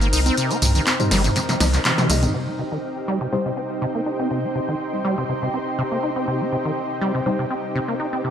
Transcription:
0.00 2.30 C3 medium
0.00 0.08 A#3 medium
0.00 2.30 C4 medium
0.00 2.30 D#4 medium
0.00 2.33 D#4 medium
0.00 2.33 A#4 medium
0.00 2.34 C5 medium
0.00 2.34 G5 medium
0.00 2.37 F6 medium
0.00 closed hi-hat soft
0.00 tambourine soft
0.13 0.31 C2 medium
0.13 0.20 D#4 medium
0.13 open hi-hat medium
0.13 ride medium
0.13 tambourine medium
0.26 0.35 C4 medium
0.26 closed hi-hat medium
0.26 tambourine soft
0.26 high conga medium
0.37 0.52 C3 medium
0.37 closed hi-hat medium
0.37 tambourine soft
0.51 0.57 C4 medium
0.51 closed hi-hat soft
0.51 tambourine soft
0.62 0.80 C2 loud
0.62 0.66 C3 medium
0.62 mid tom loud
0.62 open hi-hat loud
0.62 ride medium
0.62 tambourine medium
0.75 0.81 D#3 medium
0.75 closed hi-hat medium
0.75 tambourine soft
0.87 clap loud
0.87 closed hi-hat medium
0.87 tambourine soft
0.87 high conga medium
1.00 1.06 G3 medium
1.00 1.06 D#4 medium
1.00 1.06 C5 medium
1.00 closed hi-hat soft
1.00 mid tom medium
1.00 tambourine soft
1.11 1.29 G1 medium
1.11 1.22 G3 loud
1.11 snare medium
1.11 open hi-hat medium
1.11 ride medium
1.11 tambourine medium
1.24 1.31 C3 medium
1.24 closed hi-hat medium
1.24 mid tom medium
1.24 tambourine soft
1.36 1.40 C3 medium
1.36 snare soft
1.36 closed hi-hat medium
1.36 tambourine soft
1.49 1.55 C3 medium
1.49 snare soft
1.49 closed hi-hat soft
1.49 tambourine soft
1.60 1.78 C2 loud
1.60 1.68 D#4 medium
1.60 snare medium
1.60 open hi-hat loud
1.60 ride medium
1.60 tambourine medium
1.60 high conga soft
1.74 1.80 C2 medium
1.74 clap soft
1.74 closed hi-hat medium
1.74 tambourine soft
1.85 1.92 C3 medium
1.85 clap loud
1.85 closed hi-hat medium
1.85 high tom medium
1.85 tambourine soft
1.98 2.08 C3 loud
1.98 snare soft
1.98 closed hi-hat soft
1.98 high tom medium
1.98 tambourine soft
2.10 2.27 C2 loud
2.10 2.59 G3 medium
2.10 2.17 A#3 medium
2.10 2.59 D#4 medium
2.10 2.59 D#5 loud
2.10 open hi-hat medium
2.10 mid tom medium
2.10 ride medium
2.10 tambourine medium
2.23 2.32 D#3 medium
2.23 closed hi-hat medium
2.23 mid tom medium
2.23 tambourine soft
2.23 high conga medium
2.34 2.49 C3 medium
2.34 8.30 C3 medium
2.34 8.30 C4 medium
2.34 8.30 D#4 medium
2.34 8.30 G4 medium
2.47 2.54 C4 medium
2.47 8.30 C5 medium
2.59 2.63 C3 medium
2.72 2.78 D#3 medium
2.94 8.30 G5 medium
3.08 3.19 G3 medium
3.21 3.27 C3 medium
3.32 3.37 C3 medium
3.32 3.43 G3 loud
3.32 3.43 D#4 medium
3.32 3.43 C5 loud
3.46 3.52 C3 medium
3.57 3.61 C4 medium
3.82 3.86 C3 loud
3.92 4.01 A#3 medium
3.92 7.89 C6 medium
4.06 4.13 D#4 medium
4.19 4.29 C4 medium
4.31 4.45 C3 medium
4.44 4.50 C4 medium
4.55 4.60 C3 medium
4.69 4.75 D#3 medium
4.93 4.99 G3 medium
4.93 4.99 D#4 medium
4.93 4.99 C5 medium
5.05 5.15 G3 loud
5.18 5.24 C3 medium
5.29 5.34 C3 medium
5.42 5.49 C3 medium
5.54 5.58 C4 medium
5.78 5.83 C3 loud
5.91 5.98 A#3 medium
6.03 6.10 D#4 medium
6.16 6.26 C4 medium
6.28 6.42 C3 medium
6.41 6.47 C4 medium
6.52 6.56 C3 medium
6.65 6.72 D#3 medium
7.01 7.12 G3 loud
7.14 7.21 C3 medium
7.26 7.30 C3 medium
7.26 7.37 G3 loud
7.26 7.37 D#4 medium
7.26 7.37 C5 loud
7.39 7.45 C3 medium
7.50 7.55 C4 medium
7.74 7.79 C3 loud
7.74 8.30 D6 medium
7.88 7.95 A#3 medium
8.00 8.07 D#4 medium
8.13 8.22 C4 medium
8.24 8.30 C3 medium

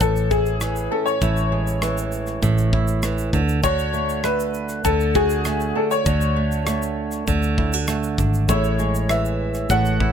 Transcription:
0.00 0.87 A1 medium
0.00 1.21 A2 medium
0.00 0.60 E3 medium
0.00 0.30 E4 medium
0.00 0.32 A4 medium
0.00 kick medium
0.00 shaker medium
0.16 shaker medium
0.31 1.21 E4 medium
0.31 0.87 G#4 medium
0.31 kick medium
0.31 shaker soft
0.46 shaker soft
0.61 1.81 E3 medium
0.61 cross-stick medium
0.61 shaker medium
0.76 shaker soft
0.91 3.34 C#4 medium
0.91 1.07 A4 medium
1.06 2.84 C#5 medium
1.06 shaker soft
1.22 2.39 A1 medium
1.22 2.41 A2 medium
1.22 2.72 E4 medium
1.22 kick loud
1.22 shaker medium
1.37 shaker soft
1.52 3.40 G#3 soft
1.67 shaker soft
1.82 3.02 E3 medium
1.82 cross-stick loud
1.82 shaker medium
1.98 shaker medium
2.12 shaker soft
2.27 cross-stick soft
2.27 shaker soft
2.42 3.29 A1 loud
2.42 3.39 A2 medium
2.42 kick medium
2.42 shaker medium
2.58 shaker soft
2.73 3.40 E4 medium
2.73 kick medium
2.88 shaker medium
3.03 3.33 E3 medium
3.03 cross-stick loud
3.03 shaker medium
3.18 shaker soft
3.33 4.81 D2 medium
3.33 3.62 D3 medium
3.33 kick medium
3.33 shaker soft
3.49 shaker soft
3.63 4.84 D3 medium
3.63 5.14 F#4 medium
3.63 4.20 C#5 loud
3.63 kick loud
3.63 shaker medium
3.79 shaker soft
3.94 4.24 A3 medium
3.94 shaker soft
4.09 shaker soft
4.24 5.45 A3 medium
4.24 4.87 B4 medium
4.24 cross-stick loud
4.24 shaker medium
4.40 shaker medium
4.54 shaker soft
4.69 cross-stick soft
4.69 shaker soft
4.84 5.72 D2 medium
4.84 6.05 D3 medium
4.84 5.16 A4 medium
4.84 kick medium
4.84 shaker medium
5.00 shaker medium
5.15 6.05 F#4 medium
5.15 5.78 G#4 loud
5.15 kick medium
5.15 shaker soft
5.30 shaker medium
5.45 6.36 A3 medium
5.45 cross-stick medium
5.45 shaker medium
5.60 shaker soft
5.75 8.18 D4 medium
5.75 5.92 A4 medium
5.91 7.69 C#5 medium
5.91 shaker soft
6.06 7.23 D2 loud
6.06 7.26 D3 medium
6.06 7.57 F#4 medium
6.06 kick loud
6.06 shaker medium
6.21 shaker soft
6.36 6.66 A3 medium
6.52 shaker soft
6.67 7.88 A3 medium
6.67 cross-stick loud
6.67 shaker medium
6.82 shaker medium
7.12 cross-stick soft
7.12 shaker soft
7.27 8.20 D2 medium
7.27 8.55 D3 medium
7.27 kick medium
7.27 shaker medium
7.43 shaker soft
7.58 7.74 E4 medium
7.58 kick medium
7.72 8.49 F#4 medium
7.72 shaker soft
7.88 8.79 A3 medium
7.88 cross-stick loud
7.88 shaker medium
8.03 shaker soft
8.18 8.46 G#1 medium
8.18 8.55 D4 medium
8.18 kick medium
8.18 shaker soft
8.34 shaker soft
8.48 9.66 A1 loud
8.48 9.69 A2 medium
8.48 9.40 A3 medium
8.48 10.00 E4 medium
8.48 9.40 G#4 medium
8.48 9.11 C#5 medium
8.48 9.41 C#5 medium
8.48 kick loud
8.48 shaker medium
8.64 shaker soft
8.79 10.12 G#3 medium
8.79 shaker soft
8.95 shaker soft
9.09 10.12 E3 medium
9.09 9.72 E5 medium
9.09 cross-stick loud
9.09 shaker medium
9.25 shaker medium
9.54 cross-stick soft
9.54 shaker soft
9.69 10.12 A1 loud
9.69 10.12 A2 medium
9.69 10.12 A3 medium
9.69 10.12 G#4 medium
9.69 10.12 C#5 medium
9.69 10.12 F#5 medium
9.69 kick medium
9.69 shaker medium
9.85 shaker medium
10.00 10.12 E4 medium
10.00 kick medium

